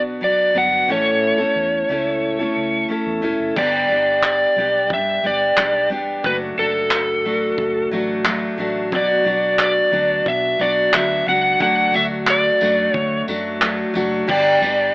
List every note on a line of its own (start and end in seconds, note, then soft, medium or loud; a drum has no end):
0.00 0.51 B1 medium
0.00 0.21 B3 soft
0.00 0.22 D4 soft
0.00 0.21 F#4 soft
0.21 0.53 F#3 soft
0.21 0.54 B3 medium
0.21 0.55 D4 medium
0.21 0.56 F#4 medium
0.21 0.57 D5 medium
0.54 0.82 G1 medium
0.54 0.88 F#3 medium
0.54 0.89 B3 medium
0.54 0.89 D4 medium
0.54 0.90 F#4 medium
0.54 0.88 F#5 medium
0.88 1.44 A1 medium
0.88 1.39 A2 medium
0.88 1.39 E3 medium
0.88 1.39 A3 medium
0.88 1.39 C#4 medium
0.88 1.38 E4 medium
0.88 1.37 A4 medium
0.88 2.87 C#5 medium
1.38 1.88 A3 soft
1.38 1.89 C#4 soft
1.38 1.89 E4 soft
1.38 1.89 A4 medium
1.56 1.83 E2 medium
1.89 2.44 C#2 medium
1.89 2.39 A3 medium
1.89 2.40 C#4 medium
1.89 2.39 E4 medium
1.89 2.38 A4 medium
2.39 2.87 A3 soft
2.39 2.88 C#4 soft
2.39 2.90 E4 medium
2.39 2.89 A4 medium
2.56 2.84 C#2 medium
2.88 3.21 A3 medium
2.88 3.21 C#4 medium
2.88 3.22 E4 medium
2.88 3.23 A4 medium
3.06 3.20 E2 medium
3.22 3.37 E1 medium
3.22 3.56 A3 medium
3.22 3.56 C#4 medium
3.22 3.57 E4 medium
3.22 3.57 A4 medium
3.40 3.54 F#1 medium
3.56 3.84 G1 medium
3.56 3.90 G2 medium
3.56 3.90 D3 medium
3.56 3.88 G3 medium
3.56 3.89 B3 medium
3.56 3.90 D4 medium
3.56 3.91 G4 medium
3.56 4.25 D5 medium
3.56 kick loud
3.56 crash medium
3.89 4.45 G1 medium
3.89 4.56 G3 medium
3.89 4.57 B3 medium
3.89 4.58 D4 medium
3.89 4.58 G4 medium
4.23 4.93 D5 medium
4.23 clap loud
4.57 4.92 B1 medium
4.57 5.22 G3 medium
4.57 5.24 B3 medium
4.57 5.25 D4 medium
4.57 5.25 G4 medium
4.90 5.18 G2 medium
4.90 5.23 E5 loud
4.90 kick loud
5.23 5.51 G1 medium
5.23 5.56 G3 medium
5.23 5.57 B3 medium
5.23 5.58 D4 medium
5.23 5.59 G4 medium
5.23 5.88 D5 medium
5.57 5.90 B1 medium
5.57 5.88 G3 medium
5.57 5.89 B3 medium
5.57 5.91 D4 medium
5.57 5.91 G4 medium
5.57 clap loud
5.90 6.18 E1 medium
5.90 6.23 G3 medium
5.90 6.24 B3 medium
5.90 6.24 D4 medium
5.90 6.25 G4 medium
6.24 6.52 F#1 loud
6.24 6.56 F#3 medium
6.24 6.58 A3 medium
6.24 6.58 D4 medium
6.24 6.59 F#4 medium
6.24 6.35 B4 medium
6.24 kick loud
6.57 7.24 F#1 medium
6.57 7.24 F#3 medium
6.57 7.24 A3 medium
6.57 7.26 D4 medium
6.57 7.27 F#4 medium
6.57 7.89 A4 medium
6.91 clap loud
7.24 7.52 A1 medium
7.24 7.91 F#3 medium
7.24 7.91 A3 medium
7.24 7.93 D4 medium
7.24 7.94 F#4 medium
7.58 7.86 F#1 medium
7.58 kick medium
7.91 8.46 A1 medium
7.91 8.23 F#3 medium
7.91 8.24 A3 medium
7.91 8.25 D4 medium
7.91 8.27 F#4 medium
8.24 8.56 F#3 medium
8.24 8.58 A3 medium
8.24 8.58 D4 medium
8.24 8.60 F#4 medium
8.24 clap loud
8.58 8.92 A1 medium
8.58 8.91 F#3 medium
8.58 8.92 A3 medium
8.58 8.92 D4 medium
8.58 8.93 F#4 medium
8.92 9.20 B1 medium
8.92 9.26 B2 medium
8.92 9.23 F#3 medium
8.92 9.24 B3 medium
8.92 9.25 D4 medium
8.92 9.25 F#4 medium
8.92 kick loud
8.96 9.57 D5 medium
9.24 9.81 B1 medium
9.24 9.91 F#3 medium
9.24 9.92 B3 medium
9.24 9.93 D4 medium
9.24 9.94 F#4 medium
9.59 10.30 D5 medium
9.59 clap loud
9.91 10.20 D2 medium
9.91 10.58 F#3 medium
9.91 10.59 B3 medium
9.91 10.60 D4 medium
9.91 10.61 F#4 medium
10.26 10.54 B2 medium
10.26 10.62 E5 medium
10.26 kick loud
10.59 10.87 B1 medium
10.59 10.92 F#3 medium
10.59 10.92 B3 medium
10.59 10.93 D4 medium
10.59 10.94 F#4 medium
10.59 10.95 D5 medium
10.93 11.21 D2 medium
10.93 11.25 F#3 medium
10.93 11.26 B3 medium
10.93 11.27 D4 medium
10.93 11.28 F#4 medium
10.93 11.25 E5 medium
10.93 clap loud
11.26 11.54 C#2 medium
11.26 11.59 F#3 medium
11.26 11.60 B3 medium
11.26 11.60 D4 medium
11.26 11.60 F#4 medium
11.26 11.59 F#5 medium
11.60 11.88 D2 loud
11.60 11.94 D3 medium
11.60 11.91 F#3 medium
11.60 11.93 A3 medium
11.60 11.93 D4 medium
11.60 11.94 F#4 medium
11.60 11.93 F#5 loud
11.60 kick loud
11.92 12.49 D2 medium
11.92 12.59 F#3 medium
11.92 12.60 A3 medium
11.92 12.62 D4 medium
11.92 12.62 F#4 medium
11.92 12.05 E5 medium
11.92 tambourine medium
12.27 12.94 D5 medium
12.27 clap loud
12.60 12.89 F#2 medium
12.60 13.26 F#3 medium
12.60 13.27 A3 medium
12.60 13.29 D4 medium
12.60 13.29 F#4 medium
12.60 tambourine medium
12.94 13.22 D2 medium
12.94 13.25 C#5 medium
12.94 kick loud
13.28 13.83 F#2 medium
13.28 13.59 F#3 medium
13.28 13.60 A3 medium
13.28 13.62 D4 medium
13.28 13.62 F#4 medium
13.28 tambourine medium
13.61 13.92 F#3 medium
13.61 13.94 A3 medium
13.61 13.95 D4 medium
13.61 13.95 F#4 medium
13.61 clap loud
13.94 14.23 F#1 medium
13.94 14.28 F#3 medium
13.94 14.28 A3 medium
13.94 14.28 D4 medium
13.94 14.29 F#4 medium
13.94 tambourine medium
14.27 14.56 G1 loud
14.27 14.61 G2 medium
14.27 14.62 D3 medium
14.27 14.60 G3 medium
14.27 14.61 B3 medium
14.27 14.62 D4 medium
14.27 14.63 G4 medium
14.27 14.95 D5 medium
14.27 kick loud
14.27 crash loud
14.61 14.89 G1 medium
14.61 14.95 G3 medium
14.61 14.95 B3 medium
14.61 14.95 D4 medium
14.61 14.95 G4 medium
14.61 tambourine medium